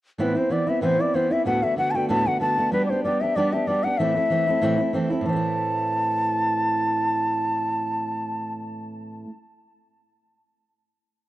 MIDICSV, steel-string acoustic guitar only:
0, 0, Header, 1, 2, 480
1, 0, Start_track
1, 0, Tempo, 317460
1, 277, Time_signature, 4, 2, 24, 8
1, 6036, Tempo, 313643
1, 17202, End_track
2, 0, Start_track
2, 0, Title_t, "Steel-string acoustic guitar"
2, 0, Program_c, 0, 25
2, 277, Note_on_c, 0, 45, 60
2, 284, Note_on_c, 0, 52, 60
2, 293, Note_on_c, 0, 59, 68
2, 298, Note_on_c, 0, 60, 68
2, 303, Note_on_c, 0, 64, 68
2, 508, Note_off_c, 0, 64, 0
2, 526, Note_on_c, 0, 64, 41
2, 532, Note_off_c, 0, 60, 0
2, 538, Note_off_c, 0, 45, 0
2, 542, Note_off_c, 0, 52, 0
2, 546, Note_off_c, 0, 59, 0
2, 550, Note_on_c, 0, 60, 41
2, 563, Note_on_c, 0, 59, 30
2, 746, Note_off_c, 0, 59, 0
2, 749, Note_on_c, 0, 52, 47
2, 751, Note_off_c, 0, 64, 0
2, 758, Note_off_c, 0, 60, 0
2, 764, Note_on_c, 0, 59, 52
2, 776, Note_on_c, 0, 60, 52
2, 790, Note_on_c, 0, 64, 49
2, 990, Note_off_c, 0, 64, 0
2, 1008, Note_on_c, 0, 64, 46
2, 1015, Note_off_c, 0, 52, 0
2, 1015, Note_off_c, 0, 60, 0
2, 1023, Note_off_c, 0, 59, 0
2, 1033, Note_on_c, 0, 60, 39
2, 1048, Note_on_c, 0, 59, 39
2, 1227, Note_off_c, 0, 59, 0
2, 1227, Note_on_c, 0, 45, 57
2, 1231, Note_off_c, 0, 60, 0
2, 1233, Note_off_c, 0, 64, 0
2, 1239, Note_on_c, 0, 52, 65
2, 1245, Note_on_c, 0, 59, 58
2, 1249, Note_on_c, 0, 60, 68
2, 1256, Note_on_c, 0, 64, 74
2, 1482, Note_off_c, 0, 64, 0
2, 1495, Note_off_c, 0, 45, 0
2, 1500, Note_on_c, 0, 64, 44
2, 1501, Note_off_c, 0, 52, 0
2, 1504, Note_off_c, 0, 59, 0
2, 1506, Note_off_c, 0, 60, 0
2, 1528, Note_on_c, 0, 60, 44
2, 1542, Note_on_c, 0, 59, 41
2, 1720, Note_off_c, 0, 59, 0
2, 1720, Note_off_c, 0, 64, 0
2, 1721, Note_on_c, 0, 52, 49
2, 1733, Note_off_c, 0, 60, 0
2, 1738, Note_on_c, 0, 59, 52
2, 1751, Note_on_c, 0, 60, 54
2, 1758, Note_on_c, 0, 64, 52
2, 1955, Note_off_c, 0, 64, 0
2, 1973, Note_on_c, 0, 64, 48
2, 1976, Note_off_c, 0, 60, 0
2, 1982, Note_off_c, 0, 52, 0
2, 1991, Note_off_c, 0, 59, 0
2, 1994, Note_on_c, 0, 60, 51
2, 2012, Note_on_c, 0, 59, 36
2, 2191, Note_on_c, 0, 38, 57
2, 2196, Note_off_c, 0, 59, 0
2, 2197, Note_off_c, 0, 64, 0
2, 2202, Note_on_c, 0, 45, 57
2, 2206, Note_on_c, 0, 50, 57
2, 2207, Note_off_c, 0, 60, 0
2, 2214, Note_on_c, 0, 59, 65
2, 2217, Note_on_c, 0, 57, 66
2, 2222, Note_on_c, 0, 66, 65
2, 2432, Note_off_c, 0, 66, 0
2, 2447, Note_off_c, 0, 57, 0
2, 2450, Note_on_c, 0, 66, 43
2, 2458, Note_off_c, 0, 38, 0
2, 2458, Note_off_c, 0, 59, 0
2, 2463, Note_off_c, 0, 45, 0
2, 2465, Note_on_c, 0, 57, 32
2, 2466, Note_off_c, 0, 50, 0
2, 2476, Note_on_c, 0, 59, 34
2, 2486, Note_on_c, 0, 50, 31
2, 2647, Note_off_c, 0, 50, 0
2, 2665, Note_on_c, 0, 50, 50
2, 2669, Note_off_c, 0, 59, 0
2, 2676, Note_off_c, 0, 66, 0
2, 2678, Note_off_c, 0, 57, 0
2, 2687, Note_on_c, 0, 59, 44
2, 2697, Note_on_c, 0, 57, 46
2, 2712, Note_on_c, 0, 66, 59
2, 2917, Note_off_c, 0, 66, 0
2, 2929, Note_off_c, 0, 57, 0
2, 2935, Note_on_c, 0, 66, 44
2, 2936, Note_off_c, 0, 50, 0
2, 2946, Note_off_c, 0, 59, 0
2, 2947, Note_on_c, 0, 57, 38
2, 2967, Note_on_c, 0, 59, 34
2, 2978, Note_on_c, 0, 50, 38
2, 3151, Note_off_c, 0, 50, 0
2, 3154, Note_on_c, 0, 38, 72
2, 3156, Note_off_c, 0, 59, 0
2, 3158, Note_off_c, 0, 66, 0
2, 3162, Note_on_c, 0, 45, 67
2, 3165, Note_off_c, 0, 57, 0
2, 3169, Note_on_c, 0, 50, 64
2, 3175, Note_on_c, 0, 59, 75
2, 3182, Note_on_c, 0, 57, 58
2, 3183, Note_on_c, 0, 66, 72
2, 3392, Note_off_c, 0, 66, 0
2, 3407, Note_off_c, 0, 57, 0
2, 3411, Note_on_c, 0, 66, 37
2, 3420, Note_off_c, 0, 38, 0
2, 3424, Note_off_c, 0, 45, 0
2, 3425, Note_off_c, 0, 59, 0
2, 3425, Note_on_c, 0, 57, 41
2, 3428, Note_off_c, 0, 50, 0
2, 3443, Note_on_c, 0, 59, 37
2, 3450, Note_on_c, 0, 50, 34
2, 3607, Note_off_c, 0, 50, 0
2, 3624, Note_off_c, 0, 59, 0
2, 3625, Note_on_c, 0, 50, 53
2, 3637, Note_off_c, 0, 66, 0
2, 3638, Note_off_c, 0, 57, 0
2, 3642, Note_on_c, 0, 59, 51
2, 3656, Note_on_c, 0, 57, 50
2, 3667, Note_on_c, 0, 66, 51
2, 3875, Note_off_c, 0, 66, 0
2, 3891, Note_off_c, 0, 57, 0
2, 3893, Note_on_c, 0, 66, 42
2, 3896, Note_off_c, 0, 50, 0
2, 3904, Note_off_c, 0, 59, 0
2, 3909, Note_on_c, 0, 57, 43
2, 3923, Note_on_c, 0, 59, 39
2, 3934, Note_on_c, 0, 50, 40
2, 4101, Note_off_c, 0, 50, 0
2, 4107, Note_off_c, 0, 59, 0
2, 4107, Note_on_c, 0, 55, 60
2, 4118, Note_off_c, 0, 66, 0
2, 4125, Note_on_c, 0, 59, 49
2, 4126, Note_off_c, 0, 57, 0
2, 4133, Note_on_c, 0, 62, 54
2, 4140, Note_on_c, 0, 67, 62
2, 4361, Note_off_c, 0, 67, 0
2, 4376, Note_off_c, 0, 55, 0
2, 4379, Note_on_c, 0, 67, 36
2, 4384, Note_off_c, 0, 62, 0
2, 4385, Note_off_c, 0, 59, 0
2, 4402, Note_on_c, 0, 62, 36
2, 4417, Note_on_c, 0, 59, 33
2, 4597, Note_off_c, 0, 59, 0
2, 4600, Note_off_c, 0, 67, 0
2, 4600, Note_on_c, 0, 55, 44
2, 4612, Note_off_c, 0, 62, 0
2, 4615, Note_on_c, 0, 59, 47
2, 4631, Note_on_c, 0, 62, 53
2, 4644, Note_on_c, 0, 67, 55
2, 4837, Note_off_c, 0, 67, 0
2, 4855, Note_on_c, 0, 67, 41
2, 4861, Note_off_c, 0, 62, 0
2, 4862, Note_off_c, 0, 55, 0
2, 4870, Note_off_c, 0, 59, 0
2, 4879, Note_on_c, 0, 62, 36
2, 4897, Note_on_c, 0, 59, 35
2, 5078, Note_off_c, 0, 67, 0
2, 5079, Note_off_c, 0, 59, 0
2, 5081, Note_on_c, 0, 55, 62
2, 5089, Note_off_c, 0, 62, 0
2, 5097, Note_on_c, 0, 59, 73
2, 5106, Note_on_c, 0, 62, 77
2, 5115, Note_on_c, 0, 67, 80
2, 5315, Note_off_c, 0, 67, 0
2, 5333, Note_on_c, 0, 67, 49
2, 5339, Note_off_c, 0, 62, 0
2, 5342, Note_off_c, 0, 55, 0
2, 5350, Note_off_c, 0, 59, 0
2, 5357, Note_on_c, 0, 62, 41
2, 5376, Note_on_c, 0, 59, 34
2, 5549, Note_off_c, 0, 59, 0
2, 5551, Note_on_c, 0, 55, 48
2, 5556, Note_off_c, 0, 67, 0
2, 5567, Note_off_c, 0, 62, 0
2, 5567, Note_on_c, 0, 59, 48
2, 5582, Note_on_c, 0, 62, 48
2, 5595, Note_on_c, 0, 67, 52
2, 5790, Note_off_c, 0, 67, 0
2, 5809, Note_on_c, 0, 67, 47
2, 5815, Note_off_c, 0, 55, 0
2, 5817, Note_off_c, 0, 62, 0
2, 5823, Note_off_c, 0, 59, 0
2, 5835, Note_on_c, 0, 62, 44
2, 5850, Note_on_c, 0, 59, 36
2, 6031, Note_off_c, 0, 67, 0
2, 6031, Note_on_c, 0, 45, 56
2, 6036, Note_on_c, 0, 52, 56
2, 6039, Note_off_c, 0, 59, 0
2, 6041, Note_off_c, 0, 62, 0
2, 6045, Note_on_c, 0, 60, 52
2, 6047, Note_on_c, 0, 57, 76
2, 6056, Note_on_c, 0, 64, 75
2, 6258, Note_off_c, 0, 64, 0
2, 6276, Note_on_c, 0, 64, 32
2, 6280, Note_off_c, 0, 57, 0
2, 6296, Note_off_c, 0, 45, 0
2, 6298, Note_off_c, 0, 60, 0
2, 6298, Note_on_c, 0, 57, 41
2, 6299, Note_off_c, 0, 52, 0
2, 6316, Note_on_c, 0, 60, 26
2, 6501, Note_off_c, 0, 60, 0
2, 6507, Note_off_c, 0, 64, 0
2, 6508, Note_on_c, 0, 52, 51
2, 6519, Note_off_c, 0, 57, 0
2, 6520, Note_on_c, 0, 60, 46
2, 6536, Note_on_c, 0, 57, 62
2, 6550, Note_on_c, 0, 64, 56
2, 6753, Note_off_c, 0, 64, 0
2, 6771, Note_on_c, 0, 64, 50
2, 6776, Note_off_c, 0, 52, 0
2, 6779, Note_off_c, 0, 57, 0
2, 6782, Note_off_c, 0, 60, 0
2, 6797, Note_on_c, 0, 57, 47
2, 6817, Note_on_c, 0, 60, 43
2, 6989, Note_off_c, 0, 60, 0
2, 6991, Note_on_c, 0, 45, 77
2, 6994, Note_off_c, 0, 57, 0
2, 6996, Note_off_c, 0, 64, 0
2, 7001, Note_on_c, 0, 52, 66
2, 7007, Note_on_c, 0, 60, 78
2, 7012, Note_on_c, 0, 57, 80
2, 7018, Note_on_c, 0, 64, 84
2, 7219, Note_off_c, 0, 64, 0
2, 7238, Note_on_c, 0, 64, 48
2, 7249, Note_off_c, 0, 57, 0
2, 7258, Note_off_c, 0, 45, 0
2, 7262, Note_off_c, 0, 60, 0
2, 7263, Note_off_c, 0, 52, 0
2, 7268, Note_on_c, 0, 57, 38
2, 7281, Note_on_c, 0, 60, 39
2, 7469, Note_off_c, 0, 64, 0
2, 7471, Note_off_c, 0, 60, 0
2, 7473, Note_on_c, 0, 52, 53
2, 7484, Note_off_c, 0, 57, 0
2, 7489, Note_on_c, 0, 60, 61
2, 7505, Note_on_c, 0, 57, 63
2, 7517, Note_on_c, 0, 64, 53
2, 7715, Note_off_c, 0, 64, 0
2, 7733, Note_on_c, 0, 64, 51
2, 7739, Note_off_c, 0, 52, 0
2, 7739, Note_off_c, 0, 57, 0
2, 7747, Note_off_c, 0, 60, 0
2, 7757, Note_on_c, 0, 57, 43
2, 7771, Note_on_c, 0, 60, 42
2, 7902, Note_on_c, 0, 45, 61
2, 7957, Note_off_c, 0, 64, 0
2, 7969, Note_off_c, 0, 57, 0
2, 7970, Note_on_c, 0, 52, 56
2, 7976, Note_off_c, 0, 60, 0
2, 8024, Note_on_c, 0, 60, 59
2, 8080, Note_on_c, 0, 57, 64
2, 8132, Note_on_c, 0, 64, 64
2, 14063, Note_off_c, 0, 45, 0
2, 14097, Note_off_c, 0, 52, 0
2, 14124, Note_off_c, 0, 60, 0
2, 14152, Note_off_c, 0, 57, 0
2, 14178, Note_off_c, 0, 64, 0
2, 17202, End_track
0, 0, End_of_file